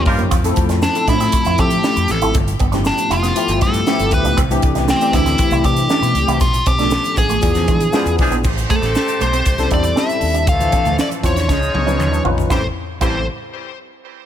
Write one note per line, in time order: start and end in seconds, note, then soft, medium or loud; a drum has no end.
0.00 0.34 F3 medium
0.00 0.34 A#3 medium
0.00 0.34 C#4 medium
0.00 0.34 D#4 medium
0.00 0.34 F4 medium
0.00 0.34 G4 medium
0.05 0.15 G2 medium
0.05 0.22 G3 loud
0.05 0.22 A#3 medium
0.05 0.22 F4 loud
0.05 0.22 A#4 loud
0.05 muted clean electric guitar stroke soft
0.05 kick loud
0.05 open hi-hat medium
0.18 0.28 F#2 medium
0.18 0.29 A#3 medium
0.18 closed hi-hat medium
0.31 0.49 F2 loud
0.31 0.41 F4 medium
0.31 kick loud
0.31 closed hi-hat medium
0.31 shaker medium
0.44 0.83 F3 loud
0.44 0.83 A3 loud
0.44 0.83 C4 loud
0.44 0.84 E4 loud
0.44 0.84 A4 loud
0.44 closed hi-hat medium
0.44 shaker medium
0.56 0.83 F2 loud
0.56 muted clean electric guitar stroke soft
0.56 kick loud
0.56 closed hi-hat medium
0.69 0.79 C4 medium
0.69 snare soft
0.69 closed hi-hat soft
0.69 shaker medium
0.82 1.06 D4 medium
0.82 muted clean electric guitar stroke soft
0.82 snare loud
0.82 shaker medium
0.95 1.44 F3 medium
0.95 1.44 A3 medium
0.95 1.44 C4 medium
0.95 1.44 E4 medium
0.95 1.44 A4 medium
0.95 closed hi-hat medium
0.95 shaker medium
1.08 1.25 A2 medium
1.08 1.18 D4 medium
1.08 1.60 E4 medium
1.08 kick medium
1.08 snare soft
1.08 closed hi-hat medium
1.08 shaker medium
1.20 1.30 C4 medium
1.20 snare soft
1.20 closed hi-hat medium
1.20 shaker medium
1.32 muted clean electric guitar stroke soft
1.32 kick medium
1.32 closed hi-hat loud
1.32 shaker medium
1.45 1.55 F2 loud
1.45 1.56 E4 medium
1.45 closed hi-hat medium
1.45 shaker medium
1.58 1.76 F3 medium
1.58 2.07 F3 medium
1.58 2.07 A3 medium
1.58 2.07 C4 medium
1.58 1.69 C4 medium
1.58 2.08 E4 medium
1.58 2.12 G4 loud
1.58 2.08 A4 medium
1.58 kick medium
1.58 closed hi-hat medium
1.58 shaker medium
1.70 closed hi-hat medium
1.70 shaker medium
1.83 1.94 D4 medium
1.83 snare loud
1.83 shaker medium
1.96 2.05 F2 medium
1.96 muted clean electric guitar stroke soft
1.96 closed hi-hat medium
1.96 shaker medium
2.08 2.19 A1 loud
2.08 2.34 A4 medium
2.08 closed hi-hat medium
2.08 shaker medium
2.22 2.31 G#1 medium
2.22 2.35 F3 medium
2.22 2.35 A3 medium
2.22 2.35 C4 medium
2.22 2.32 E4 medium
2.22 2.35 E4 medium
2.22 2.35 A4 medium
2.22 closed hi-hat medium
2.22 shaker soft
2.34 2.53 G1 loud
2.34 kick loud
2.34 closed hi-hat medium
2.34 shaker medium
2.47 muted clean electric guitar stroke soft
2.47 closed hi-hat medium
2.47 shaker soft
2.59 2.87 G1 medium
2.59 2.70 B3 medium
2.59 kick medium
2.59 closed hi-hat medium
2.72 3.21 F3 medium
2.72 3.22 A3 medium
2.72 3.22 B3 medium
2.72 2.82 D4 medium
2.72 3.22 E4 medium
2.72 3.22 G4 medium
2.72 snare soft
2.72 closed hi-hat soft
2.72 shaker soft
2.84 3.12 D4 medium
2.84 muted clean electric guitar stroke soft
2.84 snare loud
2.84 shaker medium
2.98 closed hi-hat medium
2.98 shaker medium
3.10 3.28 F1 medium
3.10 3.20 E4 medium
3.10 3.58 F4 loud
3.10 closed hi-hat medium
3.10 shaker medium
3.23 3.33 B3 medium
3.23 snare soft
3.23 closed hi-hat medium
3.23 shaker medium
3.36 3.75 F3 medium
3.36 3.75 A3 medium
3.36 3.75 B3 medium
3.36 3.75 E4 medium
3.36 3.75 G4 medium
3.36 closed hi-hat loud
3.36 shaker medium
3.48 3.63 G1 loud
3.48 closed hi-hat medium
3.48 shaker medium
3.61 3.79 G2 loud
3.61 3.71 G3 medium
3.61 4.14 A4 loud
3.61 kick medium
3.61 closed hi-hat medium
3.61 shaker soft
3.74 closed hi-hat medium
3.74 shaker medium
3.87 4.35 F3 medium
3.87 3.97 A3 medium
3.87 4.36 A3 medium
3.87 4.36 B3 medium
3.87 4.36 E4 medium
3.87 4.36 G4 loud
3.87 snare loud
3.87 shaker medium
3.99 4.09 G1 medium
3.99 closed hi-hat medium
3.99 shaker soft
4.11 4.21 D2 medium
4.11 4.37 B4 loud
4.11 muted clean electric guitar stroke soft
4.11 kick medium
4.11 closed hi-hat medium
4.11 shaker medium
4.24 4.33 C#2 medium
4.24 4.35 D4 medium
4.24 closed hi-hat medium
4.24 shaker soft
4.37 4.55 C2 loud
4.37 4.47 C4 loud
4.37 kick loud
4.37 closed hi-hat medium
4.37 shaker medium
4.51 4.89 E3 loud
4.51 4.89 A3 medium
4.51 4.90 C4 loud
4.51 4.90 D4 loud
4.51 4.90 G4 loud
4.51 closed hi-hat medium
4.51 shaker soft
4.62 4.90 C2 loud
4.62 muted clean electric guitar stroke soft
4.62 kick loud
4.62 closed hi-hat medium
4.75 4.85 D4 medium
4.75 snare soft
4.75 closed hi-hat medium
4.75 shaker soft
4.88 5.16 C4 medium
4.88 muted clean electric guitar stroke soft
4.88 snare loud
4.88 shaker medium
5.01 5.50 E3 medium
5.01 5.50 A3 medium
5.01 5.50 C4 medium
5.01 5.50 D4 medium
5.01 5.50 G4 medium
5.01 closed hi-hat medium
5.01 shaker medium
5.13 5.31 D2 medium
5.13 5.24 D4 medium
5.13 5.65 E4 loud
5.13 kick loud
5.13 snare soft
5.13 closed hi-hat medium
5.13 shaker medium
5.26 5.36 C4 medium
5.26 snare soft
5.26 closed hi-hat medium
5.26 shaker soft
5.38 muted clean electric guitar stroke soft
5.38 kick loud
5.38 closed hi-hat loud
5.38 shaker medium
5.51 5.60 C2 loud
5.51 5.62 E4 medium
5.51 closed hi-hat medium
5.51 shaker soft
5.64 5.82 C3 medium
5.64 6.13 E3 medium
5.64 6.13 A3 medium
5.64 5.74 C4 medium
5.64 6.13 C4 medium
5.64 6.13 D4 medium
5.64 6.13 G4 medium
5.64 6.41 G4 medium
5.64 kick medium
5.64 closed hi-hat medium
5.64 shaker medium
5.76 closed hi-hat medium
5.76 shaker medium
5.89 6.00 D4 medium
5.89 snare loud
5.89 shaker medium
6.02 6.11 B2 loud
6.02 muted clean electric guitar stroke soft
6.02 closed hi-hat medium
6.02 shaker soft
6.15 6.24 C#2 medium
6.15 closed hi-hat medium
6.15 shaker soft
6.27 6.41 C2 medium
6.27 6.40 E3 medium
6.27 6.41 A3 medium
6.27 6.41 C4 medium
6.27 6.41 D4 medium
6.27 6.38 E4 medium
6.27 6.41 G4 medium
6.27 closed hi-hat medium
6.27 shaker medium
6.40 6.58 B1 loud
6.40 6.67 F4 loud
6.40 kick loud
6.40 closed hi-hat medium
6.40 shaker medium
6.53 muted clean electric guitar stroke soft
6.53 closed hi-hat medium
6.53 shaker medium
6.66 6.93 B1 loud
6.66 6.76 C4 medium
6.66 7.14 G4 loud
6.66 kick medium
6.66 closed hi-hat medium
6.66 shaker medium
6.78 7.27 F3 medium
6.78 7.28 A3 medium
6.78 7.28 B3 medium
6.78 6.89 D4 medium
6.78 7.28 D4 medium
6.78 7.28 A4 medium
6.78 snare soft
6.78 closed hi-hat medium
6.78 shaker medium
6.91 muted clean electric guitar stroke soft
6.91 snare loud
6.91 shaker medium
7.04 closed hi-hat medium
7.04 shaker medium
7.17 7.35 A1 medium
7.17 7.27 B3 medium
7.17 8.15 G#4 loud
7.17 kick medium
7.17 closed hi-hat medium
7.17 shaker medium
7.29 7.40 A3 medium
7.29 closed hi-hat medium
7.29 shaker soft
7.41 7.52 E2 loud
7.41 7.81 F3 medium
7.41 7.81 B3 medium
7.41 7.81 D4 medium
7.41 7.81 E4 medium
7.41 7.81 G#4 medium
7.41 kick medium
7.41 closed hi-hat loud
7.41 shaker medium
7.55 7.64 E2 loud
7.55 snare soft
7.55 closed hi-hat medium
7.55 shaker soft
7.68 7.85 E3 loud
7.68 7.78 G#3 medium
7.68 kick loud
7.68 closed hi-hat medium
7.68 shaker soft
7.80 closed hi-hat medium
7.80 shaker medium
7.92 8.41 F3 loud
7.92 8.05 F3 medium
7.92 8.03 G#3 medium
7.92 8.05 G#3 medium
7.92 8.41 B3 medium
7.92 8.42 D4 medium
7.92 8.04 D4 medium
7.92 8.42 E4 medium
7.92 8.42 G#4 loud
7.92 8.05 G#4 medium
7.92 snare loud
7.92 shaker medium
8.06 8.14 E2 medium
8.06 closed hi-hat medium
8.06 shaker soft
8.18 8.28 B1 medium
8.18 8.36 F3 loud
8.18 8.36 G#3 loud
8.18 8.36 D4 loud
8.18 8.36 G#4 loud
8.18 muted clean electric guitar stroke soft
8.18 kick loud
8.18 open hi-hat medium
8.31 8.40 A#1 medium
8.31 8.41 B3 medium
8.31 closed hi-hat medium
8.31 shaker medium
8.44 8.62 A1 loud
8.44 10.19 A3 medium
8.44 10.19 C4 medium
8.44 10.19 G4 medium
8.44 10.19 C5 loud
8.44 kick loud
8.44 crash medium
8.44 shaker medium
8.57 muted clean electric guitar stroke soft
8.57 closed hi-hat medium
8.57 shaker soft
8.69 8.79 A3 medium
8.69 9.22 A4 medium
8.69 kick loud
8.69 closed hi-hat medium
8.69 shaker medium
8.82 8.91 A1 loud
8.82 8.92 G3 medium
8.82 snare soft
8.82 closed hi-hat soft
8.82 shaker medium
8.95 muted clean electric guitar stroke soft
8.95 snare loud
8.95 shaker medium
9.08 closed hi-hat medium
9.08 shaker medium
9.21 9.38 B1 medium
9.21 9.30 A3 medium
9.21 9.68 C5 medium
9.21 closed hi-hat medium
9.21 shaker medium
9.33 9.43 C4 medium
9.33 closed hi-hat medium
9.33 shaker soft
9.46 9.64 C2 loud
9.46 kick medium
9.46 closed hi-hat loud
9.46 shaker medium
9.58 9.68 G3 medium
9.58 9.68 C4 medium
9.58 9.68 E4 medium
9.58 9.68 A4 loud
9.58 snare soft
9.58 closed hi-hat medium
9.58 shaker soft
9.70 9.89 E2 medium
9.70 9.90 G3 medium
9.70 9.90 C4 medium
9.70 9.81 D4 medium
9.70 9.91 E4 medium
9.70 9.91 A4 medium
9.70 9.96 D5 medium
9.70 kick medium
9.70 closed hi-hat medium
9.84 closed hi-hat medium
9.84 shaker medium
9.96 10.45 G3 medium
9.96 10.06 C4 medium
9.96 10.45 C4 medium
9.96 10.45 E4 medium
9.96 10.45 A4 medium
9.96 10.45 E5 medium
9.96 snare loud
9.96 shaker medium
10.09 muted clean electric guitar stroke soft
10.09 closed hi-hat medium
10.09 shaker medium
10.21 10.47 D#2 medium
10.21 open hi-hat medium
10.34 10.44 D4 medium
10.34 closed hi-hat medium
10.34 shaker soft
10.47 10.65 D2 medium
10.47 11.22 E3 medium
10.47 11.22 F3 medium
10.47 11.22 A3 medium
10.47 11.22 A4 loud
10.47 10.95 F5 loud
10.47 kick loud
10.47 closed hi-hat medium
10.47 shaker medium
10.60 11.09 E3 medium
10.60 11.08 F3 medium
10.60 11.08 D4 medium
10.60 11.09 C5 medium
10.60 muted clean electric guitar stroke soft
10.60 closed hi-hat medium
10.60 shaker soft
10.72 10.82 C4 medium
10.72 kick loud
10.72 closed hi-hat medium
10.72 shaker soft
10.85 10.95 D2 medium
10.85 10.95 A3 medium
10.85 closed hi-hat soft
10.85 shaker soft
10.99 11.07 D5 medium
10.99 snare loud
10.99 shaker medium
11.11 closed hi-hat medium
11.11 shaker medium
11.23 11.49 E2 medium
11.23 11.49 F3 medium
11.23 11.33 C4 medium
11.23 11.49 D4 medium
11.23 11.49 E4 medium
11.23 11.49 C5 loud
11.23 12.22 C#5 loud
11.23 kick medium
11.23 snare soft
11.23 closed hi-hat medium
11.23 shaker medium
11.37 snare soft
11.37 closed hi-hat medium
11.37 shaker soft
11.48 11.67 C#2 loud
11.48 12.24 F3 medium
11.48 12.24 G#3 medium
11.48 11.58 C#4 medium
11.48 12.24 D#4 medium
11.48 12.24 G#4 medium
11.48 kick medium
11.48 snare medium
11.48 shaker medium
11.61 muted clean electric guitar stroke soft
11.61 shaker medium
11.74 11.99 C#2 medium
11.74 high tom medium
11.86 12.16 F3 medium
11.86 11.96 C#4 medium
11.86 12.16 C#4 medium
11.86 12.16 D#4 medium
11.86 12.16 B4 loud
11.86 high tom medium
11.86 shaker soft
11.99 12.17 D#2 medium
11.99 muted clean electric guitar stroke soft
11.99 mid tom medium
11.99 shaker medium
12.12 12.22 D4 medium
12.12 shaker soft
12.24 12.43 A#1 medium
12.24 12.50 F3 loud
12.24 12.50 C#4 medium
12.24 12.51 D#4 medium
12.24 12.35 F4 medium
12.24 12.51 B4 loud
12.24 floor tom loud
12.38 floor tom medium
12.38 shaker soft
12.50 12.65 A1 medium
12.50 12.61 E3 medium
12.50 12.61 G3 medium
12.50 12.64 G3 medium
12.50 12.61 C4 medium
12.50 12.64 C4 medium
12.50 12.59 E4 medium
12.50 12.64 E4 medium
12.50 12.61 G4 medium
12.50 12.64 A4 medium
12.50 12.65 C5 medium
12.50 kick loud
12.50 snare medium
12.50 shaker medium
13.01 13.25 A1 loud
13.01 13.19 E3 medium
13.01 13.25 G3 medium
13.01 13.19 G3 medium
13.01 13.25 C4 medium
13.01 13.19 C4 medium
13.01 13.16 E4 medium
13.01 13.25 E4 medium
13.01 13.19 G4 loud
13.01 13.25 A4 medium
13.01 13.25 C5 medium
13.01 kick loud
13.01 crash medium
13.01 shaker medium